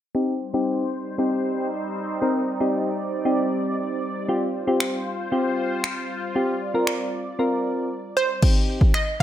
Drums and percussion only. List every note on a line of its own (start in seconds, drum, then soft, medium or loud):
4.80 finger snap loud
5.84 finger snap loud
6.87 finger snap loud
8.42 kick loud
8.42 crash medium
8.81 kick medium
8.94 finger snap loud